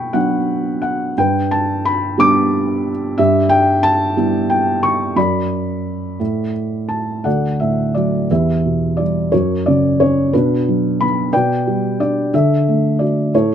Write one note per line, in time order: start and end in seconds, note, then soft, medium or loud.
0.00 1.13 B2 soft
0.00 0.10 F#5 soft
0.00 0.15 G5 medium
0.00 1.18 B5 medium
0.00 1.18 C#6 medium
0.13 1.13 F#3 soft
0.13 1.14 B3 soft
0.13 1.14 D4 soft
0.13 0.78 F#5 medium
0.82 1.14 F#5 medium
1.18 3.15 G2 medium
1.18 2.16 B4 medium
1.18 1.49 G5 medium
1.51 1.86 A5 medium
1.85 2.20 B5 medium
2.18 3.15 G3 soft
2.18 3.15 B3 soft
2.18 3.15 D4 medium
2.18 2.90 D6 medium
3.18 5.13 G2 medium
3.18 4.13 G4 medium
3.18 3.48 E5 medium
3.49 3.81 G5 medium
3.83 4.52 A5 loud
4.17 5.14 G3 soft
4.17 5.14 B3 soft
4.17 5.14 E4 medium
4.50 4.84 G5 medium
4.83 5.18 C#6 medium
5.16 6.16 F#2 medium
5.16 6.51 D5 medium
5.16 6.51 B5 medium
6.20 7.22 A2 medium
6.89 7.26 A5 medium
7.24 8.27 D2 soft
7.24 8.26 A4 soft
7.24 7.93 D5 soft
7.24 7.57 F#5 medium
7.60 8.28 A2 soft
7.60 7.93 E5 medium
7.95 8.29 F#3 soft
7.95 8.27 D5 medium
8.31 9.29 E2 soft
8.31 9.29 G4 soft
8.31 9.28 B4 soft
8.31 9.01 E5 medium
8.65 9.31 B2 soft
8.97 9.31 G3 soft
8.97 9.29 D5 medium
9.32 10.30 F#2 medium
9.32 10.29 F#4 soft
9.32 10.28 A#4 soft
9.32 9.67 C#5 medium
9.66 10.32 C#3 soft
9.66 10.00 D5 medium
10.00 10.33 C#4 soft
10.00 10.34 C#5 medium
10.33 11.31 B2 medium
10.33 11.29 D4 medium
10.33 11.29 F#4 soft
10.33 11.02 B4 medium
10.68 11.32 F#3 medium
11.01 11.33 B3 soft
11.01 11.31 B5 medium
11.33 12.31 B2 medium
11.33 12.29 B4 medium
11.33 11.99 D5 medium
11.33 12.01 G5 medium
11.67 12.31 G3 soft
12.00 12.32 D4 soft
12.00 12.34 D5 medium
12.34 13.30 D3 medium
12.34 13.30 A4 soft
12.34 13.02 E5 medium
12.68 13.32 A3 soft
12.99 13.33 F#4 soft
12.99 13.34 D5 medium
13.34 13.55 A2 soft
13.34 13.55 E4 soft
13.34 13.55 A4 medium
13.34 13.55 C#5 medium